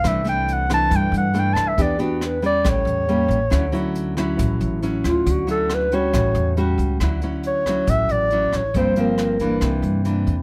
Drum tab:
HH |xxxxxxxx|xxxxxxxx|xxxxxxxx|xxxxxxxx|
SD |r--r---r|--r-r---|r--r---r|--r-r---|
BD |o---o---|o---o---|o---o---|o---o---|

HH |xxxxxxxx|xxxxxxxx|
SD |r--r---r|--r-r---|
BD |o--oo--o|o--oo--o|